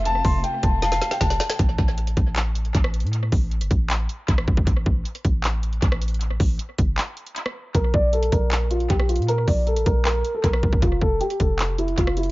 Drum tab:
HH |x-----o-----x-----x-----x-----x--x--x-----------|x-----------x--x--x-----x-----x--x--x-----x-x-x-|x-----o-----x--x--x-----x-----x-----x-----------|x-----------x--x--x-----x-----x--x--x-----x-x-x-|
CP |------------------------------------------------|------------------------x-----------------------|------------------------x-----------------------|------------------------x-----------------------|
SD |------------------------o--o--o--o--o--o--o--o--|---------------------------------------r--------|---------------------------------------r--------|---------------------------------------r--------|
BD |------o-----------o-----------------o-----------|o-----o-----------o-----------------o-----------|------o-----------o-----------------o-----o--o--|o-----o-----------o-----------------o-----------|

HH |x-----o-----x-----x-----x-----x--x--x-----------|x-----------x--x--x-----x-----x--x--x-----x-x-x-|x-----o-----x--x--x-----x-----x-----x-----------|x-----------x--x--x-----x-----x--x--x-----x-x---|
CP |------------------------x-----------------------|------------------------x-----------------------|------------------------x-----------------------|------------------------x-----------------------|
SD |---------------------------------------r--------|---------------------------------------r--------|---------------------------------------r--------|---------------------------------------r--------|
BD |------o-----------o-----------------------------|o-----o-----------o-----------------o-----------|------o-----------o-----------------o-----o--o--|o-----o-----------o-----------------o-----------|